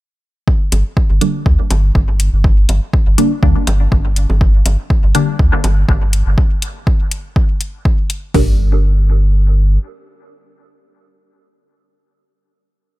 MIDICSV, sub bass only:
0, 0, Header, 1, 2, 480
1, 0, Start_track
1, 0, Key_signature, -2, "minor"
1, 0, Tempo, 491803
1, 465, Time_signature, 4, 2, 24, 8
1, 12683, End_track
2, 0, Start_track
2, 0, Title_t, "Sub bass"
2, 0, Program_c, 0, 38
2, 704, Note_on_c, 0, 31, 93
2, 810, Note_off_c, 0, 31, 0
2, 1073, Note_on_c, 0, 31, 80
2, 1165, Note_off_c, 0, 31, 0
2, 1424, Note_on_c, 0, 38, 95
2, 1530, Note_off_c, 0, 38, 0
2, 1664, Note_on_c, 0, 31, 92
2, 1866, Note_off_c, 0, 31, 0
2, 1904, Note_on_c, 0, 31, 98
2, 2237, Note_off_c, 0, 31, 0
2, 2272, Note_on_c, 0, 31, 76
2, 2593, Note_off_c, 0, 31, 0
2, 2623, Note_on_c, 0, 31, 93
2, 2730, Note_off_c, 0, 31, 0
2, 2992, Note_on_c, 0, 31, 80
2, 3085, Note_off_c, 0, 31, 0
2, 3344, Note_on_c, 0, 38, 93
2, 3450, Note_off_c, 0, 38, 0
2, 3584, Note_on_c, 0, 31, 89
2, 3785, Note_off_c, 0, 31, 0
2, 3824, Note_on_c, 0, 31, 96
2, 4157, Note_off_c, 0, 31, 0
2, 4193, Note_on_c, 0, 31, 78
2, 4514, Note_off_c, 0, 31, 0
2, 4544, Note_on_c, 0, 31, 92
2, 4650, Note_off_c, 0, 31, 0
2, 4912, Note_on_c, 0, 31, 78
2, 5005, Note_off_c, 0, 31, 0
2, 5264, Note_on_c, 0, 38, 91
2, 5370, Note_off_c, 0, 38, 0
2, 5504, Note_on_c, 0, 31, 89
2, 5706, Note_off_c, 0, 31, 0
2, 5744, Note_on_c, 0, 31, 101
2, 6077, Note_off_c, 0, 31, 0
2, 6112, Note_on_c, 0, 31, 77
2, 6205, Note_off_c, 0, 31, 0
2, 8144, Note_on_c, 0, 31, 94
2, 9545, Note_off_c, 0, 31, 0
2, 12683, End_track
0, 0, End_of_file